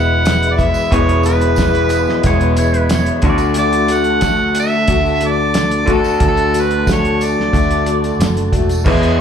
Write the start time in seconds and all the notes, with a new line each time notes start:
Already playing: E1 E2 B2 E3 G#3 B3 E4 G#4 B4 E5 F#5 B5
0.25 snare, closed hi-hat, tambourine
0.43 closed hi-hat
0.53 E4 D5
0.58 E3 G#3 B3 E5, kick, closed hi-hat, tambourine
0.74 tambourine
0.91 E1 E2 B2 E3 G#3 B3 E4 C#5, kick, closed hi-hat
1.09 closed hi-hat
1.23 E3 G#3 B3 E4 B4, closed hi-hat, tambourine
1.40 closed hi-hat, tambourine
1.56 E3 G#3 B3, kick, snare, closed hi-hat, tambourine
1.60 E4
1.73 closed hi-hat, tambourine
1.89 closed hi-hat, tambourine
2.07 snare, tambourine
2.23 E1 E2 B2 E3 G#3 B3 E4 C#5, kick, closed hi-hat, tambourine
2.40 closed hi-hat, tambourine
2.56 E3 G#3 B3 E4 C#5, closed hi-hat, tambourine
2.74 B4, closed hi-hat
2.89 snare, closed hi-hat, tambourine
2.95 C#5
3.06 closed hi-hat
3.22 D2 D3 A3 D4 F#4 A4 A5, kick, closed hi-hat, tambourine
3.30 D5
3.38 closed hi-hat, tambourine
3.54 D3 A3 D4, closed hi-hat
3.58 F#4 D5
3.73 closed hi-hat
3.88 A3 D4 F#4, closed hi-hat, tambourine
3.94 F#5
4.04 closed hi-hat, tambourine
4.21 D3 A3 D4, kick, snare, closed hi-hat, tambourine
4.26 F#4
4.40 tambourine
4.55 closed hi-hat, tambourine
4.60 E5
4.72 tambourine
4.88 D2 D3 A3 D4 F#4, kick, closed hi-hat, tambourine
5.06 tambourine
5.21 A3 D4 F#4, closed hi-hat
5.27 D5
5.54 snare, closed hi-hat, tambourine
5.71 closed hi-hat
5.86 D3 A3 D4 F#4, kick, closed hi-hat, tambourine
5.93 A4
6.04 tambourine
6.20 D2 D3 A3 D4 F#4, kick, closed hi-hat
6.28 A4
6.37 closed hi-hat
6.53 A3 D4 F#4, closed hi-hat, tambourine
6.61 B4
6.71 closed hi-hat, tambourine
6.87 D3 A3 D4 F#4, kick, snare, closed hi-hat, tambourine
6.92 C#5
7.05 closed hi-hat
7.21 D5, closed hi-hat, tambourine
7.40 snare
7.53 D2 D3 A3 D4 F#4, kick, closed hi-hat, tambourine
7.71 closed hi-hat, tambourine
7.85 A3 D4 F#4, closed hi-hat
8.04 closed hi-hat, tambourine
8.19 F#1, snare, closed hi-hat, tambourine
8.37 closed hi-hat
8.52 E1 A3 D4 F#4, kick, closed hi-hat, tambourine
8.69 closed hi-hat, tambourine
8.86 E2 B2 E3 G#3 B3 E4 G#4 B4 E5 B5, kick, crash
9.03 closed hi-hat